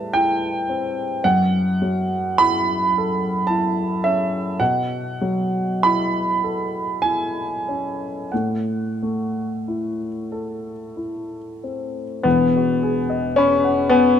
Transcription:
0.00 1.20 A2 soft
0.00 1.26 G3 soft
0.00 0.15 E4 soft
0.00 0.47 B4 soft
0.00 0.14 A5 medium
0.13 1.02 E4 soft
0.13 1.23 G5 medium
0.69 1.24 C4 soft
1.24 4.56 F#2 soft
1.24 2.41 F#5 medium
1.82 2.75 F#3 soft
2.38 3.28 E4 soft
2.38 3.48 B5 loud
2.98 3.83 A4 soft
3.47 4.37 E4 soft
3.47 4.03 A5 medium
4.04 4.61 C#4 soft
4.04 4.60 E5 medium
4.60 8.27 B2 soft
4.60 5.83 F#5 medium
5.21 6.19 F#3 soft
5.83 6.78 E4 soft
5.83 7.02 B5 medium
6.44 7.40 A4 soft
7.02 8.05 E4 soft
7.02 8.31 G#5 medium
7.68 8.33 C#4 soft
8.32 12.23 A2 soft
8.32 11.63 F#5 medium
9.02 10.07 A3 soft
9.68 10.72 E4 soft
10.32 11.36 A4 soft
10.97 12.02 E4 soft
11.64 12.26 C4 soft
12.23 14.20 E1 soft
12.23 14.20 E2 soft
12.23 13.37 B3 medium
12.56 13.00 F#4 soft
12.83 13.27 G#4 soft
13.10 13.54 D#5 soft
13.36 13.92 C#4 medium
13.36 13.82 B5 soft
13.65 14.09 F#5 soft
13.89 14.20 B3 medium
13.89 14.20 G#5 soft

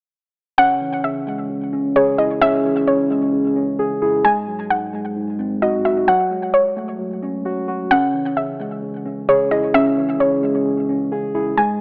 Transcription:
0.58 1.03 C#3 medium
0.58 1.96 C#4 medium
0.58 1.01 F#5 loud
0.81 1.96 E3 medium
1.04 1.48 C#3 medium
1.04 1.92 E5 medium
1.27 2.42 G#3 medium
1.50 1.95 C#3 medium
1.73 2.87 C#4 medium
1.96 2.41 C#3 medium
1.96 2.17 G#4 medium
1.96 2.18 C#5 medium
2.18 3.33 E4 medium
2.18 3.56 G#4 medium
2.18 2.40 D#5 medium
2.41 2.86 C#3 medium
2.41 3.79 C#4 loud
2.41 2.85 E5 loud
2.64 3.79 E3 medium
2.87 3.31 C#3 medium
2.87 3.75 C#5 medium
3.11 4.25 G#3 loud
3.33 3.78 C#3 medium
3.56 4.25 C#4 medium
3.79 4.25 C#3 medium
3.79 4.01 G#4 medium
4.02 4.25 E4 medium
4.02 4.25 G#4 medium
4.24 4.69 G#2 medium
4.24 5.62 G#3 medium
4.24 4.68 G#5 loud
4.48 5.62 F#3 medium
4.70 5.15 G#2 medium
4.70 5.58 F#5 medium
4.93 6.08 G#3 medium
5.16 5.61 G#2 medium
5.39 6.08 C4 medium
5.62 6.08 G#2 medium
5.62 5.84 F#4 medium
5.62 5.84 D#5 medium
5.85 6.08 D#4 medium
5.85 6.08 F#4 medium
5.85 6.07 E5 medium
6.08 6.53 F#3 medium
6.08 7.45 F#3 loud
6.08 6.51 F#5 loud
6.31 7.45 G#3 medium
6.54 6.98 F#3 medium
6.54 7.41 C#5 medium
6.77 7.91 A3 medium
6.99 7.44 F#3 medium
7.23 7.91 C#4 medium
7.45 7.91 F#3 medium
7.45 7.67 F#4 medium
7.68 7.91 F#4 medium
7.91 8.36 C#3 medium
7.91 9.29 C#4 medium
7.91 8.34 F#5 loud
8.14 9.28 E3 medium
8.37 8.81 C#3 medium
8.37 9.24 E5 medium
8.60 9.74 G#3 medium
8.82 9.27 C#3 medium
9.06 10.20 C#4 medium
9.28 9.73 C#3 medium
9.28 9.50 G#4 medium
9.28 9.50 C#5 medium
9.51 10.66 E4 medium
9.51 10.89 G#4 medium
9.51 9.73 D#5 medium
9.74 10.19 C#3 medium
9.74 11.12 C#4 loud
9.74 10.17 E5 loud
9.97 11.12 E3 medium
10.20 10.64 C#3 medium
10.20 11.08 C#5 medium
10.43 11.58 G#3 loud
10.65 11.11 C#3 medium
10.89 11.58 C#4 medium
11.12 11.58 C#3 medium
11.12 11.33 G#4 medium
11.35 11.58 E4 medium
11.35 11.58 G#4 medium
11.57 11.81 G#2 medium
11.57 11.81 G#3 medium
11.57 11.81 G#5 medium

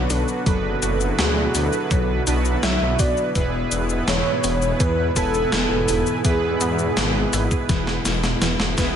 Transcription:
0.00 8.96 B2 medium
0.00 3.31 D3 medium
0.00 3.32 F#3 medium
0.00 0.42 B3 medium
0.00 0.42 D4 medium
0.00 0.42 F#4 medium
0.00 3.31 F#4 loud
0.00 0.42 B4 medium
0.10 0.25 B1 loud
0.10 0.38 D4 medium
0.10 0.24 A4 medium
0.10 open hi-hat medium
0.10 shaker medium
0.28 shaker soft
0.46 0.75 F#1 loud
0.46 0.74 F#3 loud
0.46 2.23 B3 medium
0.46 2.23 D4 medium
0.46 8.96 E4 medium
0.46 2.23 F#4 medium
0.46 1.20 A4 medium
0.46 1.15 A4 loud
0.46 2.23 B4 loud
0.46 kick loud
0.46 closed hi-hat medium
0.46 shaker soft
0.82 1.11 F#1 medium
0.82 1.10 F#4 medium
0.82 closed hi-hat medium
0.82 shaker medium
1.00 shaker soft
1.18 1.48 D2 medium
1.18 1.35 F#3 loud
1.18 1.56 G#4 medium
1.18 1.52 G#4 medium
1.18 snare loud
1.18 closed hi-hat medium
1.18 shaker soft
1.55 1.69 D2 loud
1.55 2.23 A4 medium
1.55 2.27 A4 medium
1.55 open hi-hat medium
1.55 shaker medium
1.73 shaker soft
1.91 2.20 B1 medium
1.91 2.25 F#3 loud
1.91 kick loud
1.91 closed hi-hat medium
1.91 shaker soft
2.27 2.56 B1 loud
2.27 3.31 B3 medium
2.27 3.31 D4 medium
2.27 2.54 D4 medium
2.27 3.31 F#4 medium
2.27 3.31 B4 loud
2.27 closed hi-hat medium
2.27 shaker medium
2.45 shaker soft
2.63 2.78 B1 medium
2.63 2.91 F#3 loud
2.63 2.97 E5 loud
2.63 3.01 E5 loud
2.63 snare loud
2.63 closed hi-hat medium
2.63 shaker soft
2.81 2.96 B1 medium
2.99 3.14 B1 loud
2.99 3.27 F#4 medium
2.99 3.68 D5 loud
2.99 3.72 D5 loud
2.99 kick loud
2.99 open hi-hat medium
2.99 shaker medium
3.17 shaker soft
3.35 3.64 E1 loud
3.35 8.96 G#2 medium
3.35 8.96 E3 medium
3.35 3.52 E3 loud
3.35 8.96 B3 medium
3.35 5.12 B3 medium
3.35 5.12 E4 medium
3.35 5.12 G#4 medium
3.35 5.12 B4 loud
3.35 kick loud
3.35 closed hi-hat loud
3.35 shaker soft
3.72 4.01 E1 medium
3.72 closed hi-hat medium
3.72 shaker medium
3.90 shaker soft
4.08 4.22 E1 loud
4.08 4.42 E3 loud
4.08 4.76 C#5 loud
4.08 snare loud
4.08 closed hi-hat medium
4.08 shaker soft
4.44 4.73 E1 medium
4.44 4.71 B3 medium
4.44 open hi-hat medium
4.44 shaker medium
4.62 shaker soft
4.80 5.09 E2 loud
4.80 5.07 E3 loud
4.80 5.14 B4 loud
4.80 kick loud
4.80 closed hi-hat medium
4.80 shaker soft
5.16 5.45 E1 medium
5.16 6.20 B3 medium
5.16 5.44 E4 medium
5.16 6.20 E4 medium
5.16 6.26 A4 loud
5.16 6.21 A4 loud
5.16 6.20 B4 loud
5.16 6.20 G#5 medium
5.16 kick medium
5.16 closed hi-hat medium
5.16 shaker medium
5.34 shaker soft
5.52 5.67 E1 medium
5.52 5.69 E3 loud
5.52 snare loud
5.52 closed hi-hat medium
5.52 shaker soft
5.71 5.85 E1 medium
5.88 6.03 E1 medium
5.88 open hi-hat medium
5.88 shaker medium
6.07 shaker soft
6.25 6.54 E2 medium
6.25 6.59 E3 loud
6.25 8.01 B3 medium
6.25 8.01 E4 medium
6.25 8.01 G#4 medium
6.25 8.42 G#4 loud
6.25 8.38 G#4 medium
6.25 8.01 B4 loud
6.25 kick loud
6.25 closed hi-hat loud
6.25 shaker soft
6.61 6.90 E2 medium
6.61 6.88 B3 medium
6.61 closed hi-hat medium
6.61 shaker medium
6.79 shaker soft
6.97 7.26 G#1 medium
6.97 7.24 E3 loud
6.97 snare loud
6.97 closed hi-hat medium
6.97 shaker soft
7.33 7.48 G#1 medium
7.33 7.60 E4 medium
7.33 open hi-hat medium
7.33 shaker medium
7.51 kick medium
7.51 shaker soft
7.69 7.98 E1 medium
7.69 7.86 E3 loud
7.69 kick loud
7.69 snare medium
7.69 closed hi-hat medium
7.69 shaker soft
7.87 snare medium
8.05 8.34 E1 loud
8.05 snare medium
8.05 closed hi-hat medium
8.05 shaker medium
8.24 snare medium
8.24 shaker soft
8.42 8.56 E1 medium
8.42 8.76 E3 loud
8.42 snare medium
8.42 closed hi-hat loud
8.42 shaker soft
8.60 8.74 E1 medium
8.60 snare medium
8.78 8.92 E1 loud
8.78 8.96 B3 loud
8.78 8.96 B3 medium
8.78 8.96 E4 medium
8.78 8.96 G#4 medium
8.78 8.96 B4 loud
8.78 kick loud
8.78 snare loud
8.78 open hi-hat medium
8.78 shaker medium

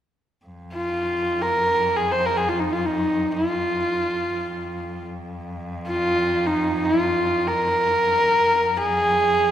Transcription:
0.46 4.40 F2 soft
0.74 1.44 F4 medium
1.42 1.98 A#4 medium
1.97 2.13 G#4 medium
2.12 2.27 C5 medium
2.26 2.38 A#4 medium
2.37 2.50 G#4 medium
2.49 2.61 F4 medium
2.60 2.74 D#4 medium
2.73 2.87 F4 medium
2.86 3.34 D#4 medium
3.32 5.07 F4 medium
4.41 8.37 F2 medium
5.87 6.48 F4 medium
6.46 6.86 D#4 medium
6.84 7.49 F4 medium
7.47 8.79 A#4 medium
8.38 9.51 F2 medium
8.77 9.51 G#4 medium

